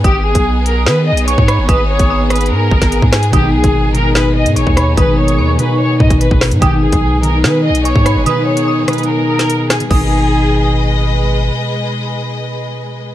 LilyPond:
<<
  \new Staff \with { instrumentName = "Synth bell" } { \time 4/4 \key gis \minor \tempo 4 = 146 dis'''2. cis'''8 b''8 | dis'''4 dis'''4 r2 | dis'''2. cis'''8 b''8 | dis'''4 cis'''4 r2 |
dis'''2. cis'''8 b''8 | dis'''4 dis'''4 r2 | dis'''2. r4 | r1 | }
  \new Staff \with { instrumentName = "Violin section" } { \time 4/4 \key gis \minor g'8 gis'4 ais'8 b'8 dis''8 cis''4 | b'8 cis''4 b'8 ais'4. gis'8 | g'8 gis'4 ais'8 b'8 dis''8 cis''4 | b'8 cis''4 b'8 cis''8 dis''8 b'8 r8 |
g'8 gis'4 ais'8 b'8 dis''8 cis''4 | b'8 cis''4 b'8 ais'4. gis'8 | gis'2. r4 | r1 | }
  \new Staff \with { instrumentName = "String section" } { \time 4/4 \key gis \minor << { <b gis'>1~ | <b gis'>1~ | <b gis'>1~ | <b gis'>1 |
<b gis'>1~ | <b gis'>1 | <gis gis' b' dis''>1~ | <gis gis' b' dis''>1 | } \\ { dis'1~ | dis'1 | dis'1~ | dis'1 |
dis'1~ | dis'1 | r1 | r1 | } >> }
  \new Staff \with { instrumentName = "Harp" } { \clef bass \time 4/4 \key gis \minor r1 | r1 | <b, dis gis dis' gis'>8. <b, dis gis dis' gis'>8. <b, dis gis dis' gis'>4.~ <b, dis gis dis' gis'>16 r8. | <b, dis gis dis' gis'>4. <b, dis gis dis' gis'>4.~ <b, dis gis dis' gis'>16 r8. |
<b, dis gis dis' gis'>8. <b, dis gis dis' gis'>8. <b, dis gis dis' gis'>4.~ <b, dis gis dis' gis'>16 r8. | <b, dis gis dis' gis'>4. <b, dis gis dis' gis'>4.~ <b, dis gis dis' gis'>16 r8. | <b, gis dis' gis'>1~ | <b, gis dis' gis'>1 | }
  \new Staff \with { instrumentName = "808-style bass" } { \clef bass \time 4/4 \key gis \minor gis,,8. b,,4~ b,,16 dis8~ dis32 b,,8~ b,,32 gis,8 g,,16 | gis,,8. gis,,4~ gis,,16 gis,8 gis,,16 gis,,8 gis,8. | gis,,8 b,,16 gis,,2 gis,16 gis,,16 dis,8. | gis,,4 dis,8 r4 gis,16 gis,,8 gis,,8 gis,16 |
gis,,8. b,,4~ b,,16 dis8~ dis32 b,,8~ b,,32 gis,8 g,,16 | r1 | gis,,1 | r1 | }
  \new DrumStaff \with { instrumentName = "Drums" } \drummode { \time 4/4 <hh bd>8. <hh bd>16 r8 hh8 sn8. hh16 hh16 bd16 <hh ss>8 | <hh bd>8. <hh bd>16 r8 <hh ss>32 hh32 hh32 hh32 r8 bd16 <hh bd sn>16 hh16 bd16 <hh ss sn>16 hh16 | <hh bd>8. <hh bd>16 r8 hh8 sn8. hh16 hh16 bd16 <hh ss>8 | <hh bd>8. hh16 r8 hh8 r8 bd16 <hh bd>16 hh16 bd16 <hho ss sn>16 hh16 |
<hh bd>8. <hh bd>16 r8 hh8 sn8. hh16 hh16 bd16 <hh ss>8 | hh8. hh16 r8 <hh ss>32 hh32 hh32 hh32 r8. <hh sn>16 hh8 <hh ss sn>16 hh16 | <cymc bd>4 r4 r4 r4 | r4 r4 r4 r4 | }
>>